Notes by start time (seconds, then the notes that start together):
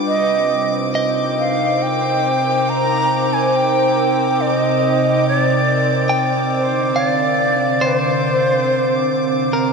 Already playing: G3 D4 F4 B4 G5 D6
0.07 C3 D#5
0.20 C4
0.51 C5
0.68 D#4
0.89 A#4
0.95 D#5
1.39 F5
1.82 G5
2.69 A#5
3.33 G#5
3.56 G5
4.41 D#5
5.28 C#5
5.40 D5
6.09 G5
6.44 D3
6.57 C5
6.96 D5 F5
7.81 C5
7.85 B4
7.96 C5
9.53 A#4